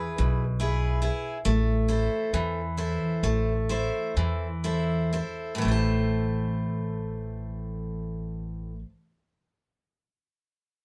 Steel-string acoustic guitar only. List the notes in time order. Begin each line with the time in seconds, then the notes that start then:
Already playing: E3 E4 G#4 B4
0.18 B2
0.60 E4 G#4 B4
1.02 E4 G#4 B4
1.45 A3
1.88 E4 A4 C5
2.34 E3
2.77 E4 A4 C5
3.23 A3
3.69 E4 A4 C5
4.17 E3
4.64 E4 A4 C5
5.13 E4 A4 C5
5.55 A2 E3
5.62 A3 E4
5.68 C5 A5